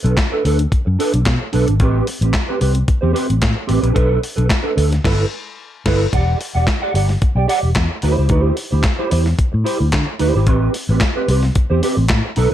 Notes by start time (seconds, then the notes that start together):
0.03 B1 D4 A4 B4, closed hi-hat
0.17 kick, snare, clap, closed hi-hat
0.32 D4 A4 B4
0.45 D2 D4 A4 B4, open hi-hat
0.59 muted clean electric guitar stroke, closed hi-hat
0.72 kick, closed hi-hat
0.85 F#2, muted clean electric guitar stroke
0.99 D4 A4 B4, open hi-hat
1.14 B1, muted clean electric guitar stroke, closed hi-hat
1.25 B2, kick, snare, clap, closed hi-hat
1.42 muted clean electric guitar stroke
1.52 B1 D4 A4 B4, open hi-hat
1.68 G#1, muted clean electric guitar stroke, closed hi-hat
1.80 A1 C4 G4 B4, kick, closed hi-hat
2.07 muted clean electric guitar stroke, open hi-hat
2.21 A1 C4 G4 B4, closed hi-hat
2.34 muted clean electric guitar stroke, kick, snare, clap, closed hi-hat
2.48 C4 G4 B4
2.60 C2 C4 G4 B4, open hi-hat
2.74 muted clean electric guitar stroke, closed hi-hat
2.88 muted clean electric guitar stroke, kick, closed hi-hat
3.01 E2 C4 G4 C5
3.13 C4 G4 B4, open hi-hat
3.28 A1, muted clean electric guitar stroke, closed hi-hat
3.41 A2, muted clean electric guitar stroke, kick, snare, clap, closed hi-hat
3.56 muted clean electric guitar stroke
3.67 A1 C4 G4 B4, open hi-hat
3.81 A#1 C4 G4 B4, closed hi-hat
3.93 B1 D4 A4 B4, kick, closed hi-hat
4.21 muted clean electric guitar stroke, open hi-hat
4.36 B1 D4 A4 B4, closed hi-hat
4.50 kick, snare, clap, closed hi-hat
4.63 D4 A4 B4
4.75 D2 D4 A4 B4, open hi-hat
4.91 muted clean electric guitar stroke, snare, closed hi-hat
5.04 G1 E4 A4 B4, kick, snare, crash
5.86 G1 E4 A4 B4, kick, snare, crash
6.13 E1 G4 D5 F#5, kick, closed hi-hat
6.40 muted clean electric guitar stroke, open hi-hat
6.55 E1 G4 D5 F#5
6.67 muted clean electric guitar stroke, kick, snare, clap, closed hi-hat
6.82 G4 D5 F#5
6.94 G1 G4 D5 F#5, open hi-hat
7.09 muted clean electric guitar stroke, snare
7.21 muted clean electric guitar stroke, kick, closed hi-hat
7.35 B1 G4 D5 G5
7.48 G4 D5 F#5, open hi-hat
7.61 E1, muted clean electric guitar stroke
7.75 E2, muted clean electric guitar stroke, kick, snare, clap, closed hi-hat
7.90 muted clean electric guitar stroke
8.02 D2 E4 G4 C5, open hi-hat
8.17 C#2 E4 G4 C5
8.29 D2 D#4 G4 C5, kick, closed hi-hat
8.41 E4
8.57 muted clean electric guitar stroke, open hi-hat
8.71 D2 E4 G4 C5
8.83 muted clean electric guitar stroke, kick, snare, clap, closed hi-hat
8.99 E4 G4 C5
9.10 E2 E4 G4 C5, open hi-hat
9.24 muted clean electric guitar stroke, snare
9.39 kick, closed hi-hat
9.52 A2, muted clean electric guitar stroke
9.64 E4 G4 C5, open hi-hat
9.80 D2, muted clean electric guitar stroke
9.91 D3, muted clean electric guitar stroke, kick, snare, clap, closed hi-hat
10.07 muted clean electric guitar stroke
10.19 D2 E4 G4 C5, open hi-hat
10.35 G#1 E4 G4 C5
10.47 A1 C4 G4 B4, kick, closed hi-hat
10.74 muted clean electric guitar stroke, open hi-hat
10.89 A1 C4 G4 B4
11.01 muted clean electric guitar stroke, kick, snare, clap, closed hi-hat
11.15 C4 G4 B4
11.28 C2 C4 G4 B4, open hi-hat
11.43 muted clean electric guitar stroke, snare
11.55 muted clean electric guitar stroke, kick, closed hi-hat
11.70 E2 C4 G4 C5
11.82 C4 G4 B4, open hi-hat
11.97 A1, muted clean electric guitar stroke
12.08 A2, muted clean electric guitar stroke, kick, snare, clap, closed hi-hat
12.25 muted clean electric guitar stroke
12.36 B1 D#4 A4 B4, open hi-hat
12.51 B4